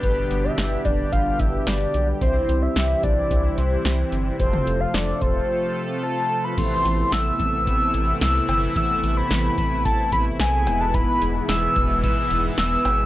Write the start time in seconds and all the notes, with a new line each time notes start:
Already playing: B2 D3 G3 B3 D4 G4 B4
0.03 G1 B4, kick, closed hi-hat
0.31 G1, closed hi-hat
0.44 E5
0.58 G1, snare, closed hi-hat
0.85 F1 D5, kick, closed hi-hat
1.12 G1 F5, kick, closed hi-hat
1.39 G1 E5, kick, closed hi-hat
1.67 G1 D5, snare, closed hi-hat
1.94 B1, closed hi-hat
2.21 C2 C3 E3 C4 E4 G4 C5, kick, closed hi-hat
2.49 C2, closed hi-hat
2.62 E5
2.76 C2, snare, closed hi-hat
3.03 B1 D5, kick, closed hi-hat
3.31 C2, kick, closed hi-hat
3.58 C2 C5, closed hi-hat
3.85 C2, snare, closed hi-hat
4.12 G1, closed hi-hat
4.40 F1 F3 A3 C4 F4 A4 C5, kick, closed hi-hat
4.53 mid tom
4.67 F1, closed hi-hat
4.80 F5
4.94 F1 D5, snare, closed hi-hat
5.21 E1 C5, kick, closed hi-hat
6.03 A5
6.44 B5
6.58 A1 C3 E3 A3 B3 C4 E4 A4 C6, kick, closed hi-hat, crash
6.85 A1, closed hi-hat
7.12 A1 E6, snare, closed hi-hat
7.40 A1, kick, closed hi-hat
7.67 E6, kick, closed hi-hat
7.94 A1, closed hi-hat
8.21 C2 E6, snare, closed hi-hat
8.49 G1, closed hi-hat, cowbell
8.76 A1 E6, kick, closed hi-hat
9.03 A1, closed hi-hat
9.17 B5
9.30 A1, snare, closed hi-hat
9.58 A1 B5, kick, closed hi-hat
9.85 A5, kick, closed hi-hat
10.12 A1 B5, kick, closed hi-hat
10.40 B1 G#5, snare, closed hi-hat
10.67 E1 G#2 B2 E3 G#3 B3 E4 G#4 B4, closed hi-hat, cowbell
10.81 A5
10.94 B5, kick, closed hi-hat
11.21 E1, closed hi-hat
11.49 E1 E6, snare, closed hi-hat
11.76 E1, kick, closed hi-hat
12.03 E6, kick, closed hi-hat
12.30 E1, closed hi-hat
12.58 E1 E6, snare, closed hi-hat
12.85 G#1, closed hi-hat, cowbell